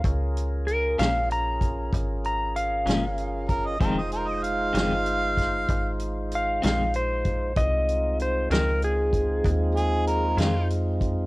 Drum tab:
HH |xxxxxxxxxxxx|xxxxxxxxxxxx|xxxxxxxxxxxx|
SD |---o-----o--|---o-o---o--|---o-----o--|
BD |o----oo----o|o----oo----o|o----oo----o|